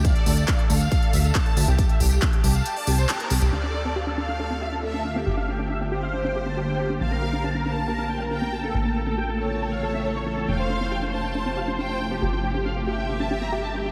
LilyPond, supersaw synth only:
\new Staff \with { instrumentName = "Supersaw synth" } { \time 4/4 \key d \minor \tempo 4 = 138 f''16 a'16 a'16 a'16 f''16 a'16 a'16 f''16 a'16 a'16 e''16 a'16 a'16 a'16 e''16 g'16 | g'16 e''16 g'16 g'16 e''16 g'16 g'16 f''16 g'16 d''16 g'16 c''16 g'16 bes'16 g'16 g'16 | f''16 a'16 a'16 a'16 f''16 a'16 a'16 f''16 a'16 a'16 e''16 a'16 a'16 a'16 f''16 g'16 | g'16 f''16 g'16 g'16 e''16 g'16 g'16 f''16 g'16 g''16 g'16 a''16 g'16 g''16 g'16 g'16 |
a''16 bes'16 bes'16 bes'16 a''16 bes'16 bes'16 a''16 bes'16 bes'16 g''16 bes'16 bes'16 bes'16 a''16 a'16 | a'16 a''16 a'16 a'16 g''16 a'16 a'16 a''16 a'16 f''16 a'16 e''16 a'16 cis''16 a'16 a'16 | g''16 c''16 c''16 c''16 g''16 c''16 c''16 g''16 c''16 c''16 f''16 c''16 c''16 c''16 g''16 g'16 | g'16 g''16 g'16 g'16 f''16 g'16 g'16 g''16 g'16 a''16 g'16 bes''16 g'16 a''16 g'16 g'16 | }